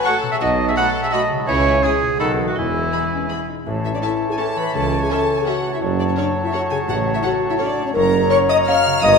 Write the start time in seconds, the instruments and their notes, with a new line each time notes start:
Already playing: harp A2 C#4 F#4 A4, bassoon F#3, flute A5
0.03 viola section A3 F#4, french horn section A3 F#4, violin section A4 C#6, vibraphone F#5, oboe F#5
0.22 harp B2
0.26 harp B3
0.31 harp F#4, violin section G#4, oboe E5, vibraphone E5
0.36 harp A4
0.41 tuba B1, double bass section B1, cello section B2, violin section F#4, oboe D#5, vibraphone D#5
0.68 violin section G#4, oboe E5, vibraphone E5
0.76 french horn section A3 F#4, viola section A3 F#4, violin section A4 B5, oboe F#5, vibraphone F#5
1.03 violin section G#4, oboe E5, vibraphone E5
1.10 viola section A3 F#4, french horn section A3 F#4, violin section F#4 B5, oboe D#5, vibraphone D#5
1.30 harp C#3
1.34 harp G#3
1.39 harp E4
1.43 bassoon E3, harp G#4
1.47 tuba C#2, double bass section C#2, cello section C#3, violin section E4, oboe C#5, vibraphone C#5, flute G#5
1.83 viola section G#3 E4, french horn section G#3 E4, violin section C#4 G#5, oboe G#4, vibraphone G#4
2.02 harp B2
2.06 harp B3
2.11 harp D#4
2.16 tuba B1, violin section D#4, viola section F#4, harp A4
2.20 double bass section B1, cello section B2, viola section D#3, bassoon D#3, french horn section F#3 D#4, oboe A4, vibraphone A4, flute F#5, violin section B5
2.38 harp E3
2.43 harp B3
2.47 violin section A3, harp E4, vibraphone F#4, oboe F#4
2.52 tuba E1, harp G#4
2.56 double bass section E1, cello section E2, bassoon E3, violin section G#3, vibraphone E4, oboe E4, flute G#5
2.92 viola section E3 G#4, french horn section B3, violin section B5
3.12 french horn section C#4
3.30 viola section E3 G#4, french horn section B3, violin section B5
3.48 french horn section D#4
3.66 tuba A1, double bass section A1, harp A2, cello section A2, bassoon E3, oboe C#5, flute A5
3.85 harp C#4, french horn section E4, violin section E5
3.94 french horn section D4, violin section D5
4.02 viola section C#4 A4, french horn section E4, harp E4, violin section E5 A5
4.21 harp A4
4.29 french horn section G#4, violin section G#5
4.38 harp C#4, viola section C#4 A4, french horn section A4, violin section A5
4.56 harp E3, french horn section B4, violin section B5
4.74 tuba C#2, double bass section C#2, harp C#3, cello section C#3, french horn section A4, violin section A5
5.02 french horn section G#4, violin section G#5
5.10 viola section C#4 A4, harp E4, french horn section A4, violin section E5 A5
5.29 harp A4
5.37 french horn section G#4, violin section G#5
5.46 viola section C#4 A4, harp C#4, french horn section F#4, violin section E5 F#5
5.64 harp A3
5.73 french horn section E4, violin section E5
5.81 tuba F#1, double bass section F#1, harp F#2, cello section F#2, bassoon F#3, oboe C#5, flute A5
5.99 harp C#4, french horn section D4, violin section D5
6.09 french horn section C#4, violin section C#5
6.16 viola section C#4 A4, french horn section D4, harp F#4, violin section C#5 D5
6.34 harp A4
6.44 french horn section E4, violin section E5
6.52 harp C#4, viola section C#4 A4, french horn section F#4, violin section C#5 F#5
6.69 harp C#3, french horn section G#4, violin section G#5
6.87 tuba A1, double bass section A1, harp A2, cello section A2, french horn section F#4, violin section F#5
7.14 french horn section E4, violin section E5
7.23 viola section C#4 A4, harp F#4, french horn section F#4, violin section C#5 F#5
7.41 harp A4
7.50 french horn section E4, violin section E5
7.58 harp C#4, viola section C#4 A4, french horn section D4, violin section C#5 D5
7.77 harp A3
7.85 french horn section C#4, violin section C#5
7.94 tuba F#1, double bass section F#1, cello section F#2, harp F#2, bassoon F#3, french horn section A#4, oboe C#5, violin section A#5, flute A#5
8.13 harp C#4
8.30 viola section C#4 A#4, harp F#4, french horn section C#5, violin section C#5 C#6
8.49 harp A#4, french horn section D#5, violin section D#6
8.66 viola section C#4 A#4, harp C#4, violin section C#5 F6, french horn section F5
8.86 harp C#3
9.02 tuba G1, double bass section G1, cello section G2, harp G2, bassoon D#3, french horn section D#5, violin section D#6